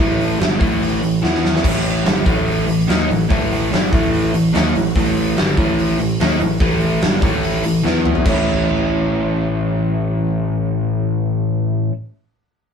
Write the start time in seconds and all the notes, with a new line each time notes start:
Already playing: A2
0.00 A1 E3 A3
0.21 open hi-hat
0.39 G1 G2 D3 G3, snare, open hi-hat
0.59 A1 A2 E3 A3, kick, open hi-hat
0.82 open hi-hat
1.02 A1 A2 E3, open hi-hat
1.22 E2 E3 B3 E4, snare
1.35 snare
1.45 snare
1.56 snare
1.62 A1 A2 E3 A3, kick, crash
1.85 open hi-hat
2.04 G1 G2 D3 G3, snare, open hi-hat
2.25 A1 A2 E3 A3, kick, open hi-hat
2.47 open hi-hat
2.67 A1 A2 E3, open hi-hat
2.88 D#2 D#3 A#3 D#4, snare, open hi-hat
3.09 A1 A2 E3, open hi-hat
3.29 A1 A2 E3 A3, kick, open hi-hat
3.52 open hi-hat
3.71 G1 G2 D3 G3, snare, open hi-hat
3.93 A1 A2 E3 A3, kick, open hi-hat
4.13 open hi-hat
4.33 A1 A2 E3, open hi-hat
4.53 D#2 D#3 A#3 D#4, snare, open hi-hat
4.75 A1 A2 E3, open hi-hat
4.96 A1 A2 E3 A3, kick, open hi-hat
5.16 open hi-hat
5.37 G1 G2 D3 G3, snare, open hi-hat
5.57 A1 A2 E3 A3, kick, open hi-hat
5.78 open hi-hat
5.99 A1 A2 E3, open hi-hat
6.20 D#2 D#3 A#3 D#4, snare, open hi-hat
6.40 A1 A2 E3, open hi-hat
6.60 A1 A2 E3 A3, kick, open hi-hat
6.80 open hi-hat
7.01 G1 G2 D3 G3, snare, open hi-hat
7.22 A1 A2 E3 A3, kick, open hi-hat
7.43 open hi-hat
7.63 A1 A2 E3, open hi-hat
7.84 E2 E3 B3 E4, snare
8.05 mid tom
8.15 floor tom
8.24 A1 A2 E3 A3 C#4, kick, crash
8.29 E4